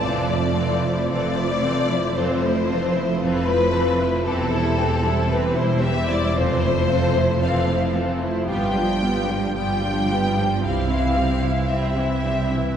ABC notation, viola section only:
X:1
M:4/4
L:1/16
Q:1/4=56
K:Flyd
V:1 name="Viola section" clef=bass
[E,C] [F,A,] [E,C] [F,A,] [E,C] [F,A,] [E,C] [F,A,] [E,C] [F,A,] [E,C] [F,A,] [E,C] [F,A,] [E,C] [F,A,] | [E,C] [G,E] [E,C] [G,E] [E,C] [G,E] [E,C] [G,E] [E,C] [F,A,] [E,C] [F,A,] [E,C] [F,A,] [E,C] [F,A,] | [G,B,] [F,G,] [G,B,] [F,G,] [G,B,] [F,G,] [G,B,] [F,G,] [G,C] [E,E] [G,C] [E,E] [G,C] [E,E] [G,C] [E,E] |]